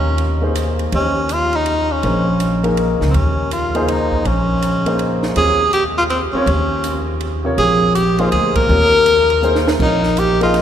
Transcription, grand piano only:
0.41 A#3 D#4 G#4 C5
0.93 C#4 G4 C5 D#5
2.04 A#3 D#4 G#4 C5
2.63 A#3 D#4 G#4 A#4
3.75 A#3 D#4 G#4 C5
4.86 A#3 D#4 G#4 C5
5.36 C4 F4 A#4 C#5
6.35 C4 F4 A#4 C#5
7.44 C3 F4 A#4 C#5
8.19 A#3 D#4 G#4 C5
8.69 C4 F4 A#4 C#5
9.42 A#3 D#4 G#4 C5
9.80 C4 F4 A#4 C#5
10.41 A#3 D#4 G#4 D#5

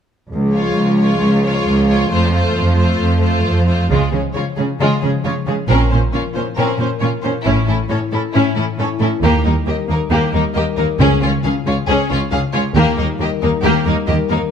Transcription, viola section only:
0.53 G#3
0.99 G#3
1.43 G#3
1.88 G#3
2.10 A3
2.33 A3
2.77 A3
3.21 A3
3.66 A3
3.89 G#3
4.11 G#3
4.34 G#3
4.57 G#3
4.80 G#3
5.02 G#3
5.24 G#3
5.47 G#3
5.70 C#4
5.91 C#4
6.13 C#4
6.36 C#4
6.58 C#4
6.80 C#4
7.02 C#4
7.25 C#4
7.47 C#4
7.68 C#4
7.91 C#4
8.14 C#4
8.36 C#4
8.56 C#4
8.80 C#4
9.03 C#4
9.23 A#3
9.45 A#3
9.67 A#3
9.88 A#3
10.11 A#3
10.34 A#3
10.55 A#3
10.78 A#3
11.00 C#4
11.23 C#4
11.45 C#4
11.68 C#4
11.90 C#4
12.10 C#4
12.32 C#4
12.54 C#4
12.77 A#3
12.99 A#3
13.20 A#3
13.43 A#3
13.65 A#3
13.87 A#3
14.09 A#3
14.31 A#3

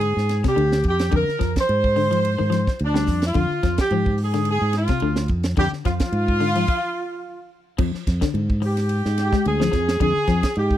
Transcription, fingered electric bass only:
Already playing: G#2
0.17 G#2
0.57 D2
0.85 F2
1.13 F2
1.28 muted fingered electric bass stroke
1.41 F2
1.69 G#2
2.40 G#2
2.81 D2
3.08 F2
3.35 F2
3.50 muted fingered electric bass stroke
3.64 F2
3.91 G#2
4.61 G#2
5.02 D2
5.29 F2
5.58 F2
5.72 muted fingered electric bass stroke
5.85 F2
6.12 G#2
7.79 F2
7.95 muted fingered electric bass stroke
8.07 F2
8.34 G#2
9.06 G#2
9.46 D2
9.73 F2
10.00 F2
10.17 muted fingered electric bass stroke
10.28 F2
10.57 G#2

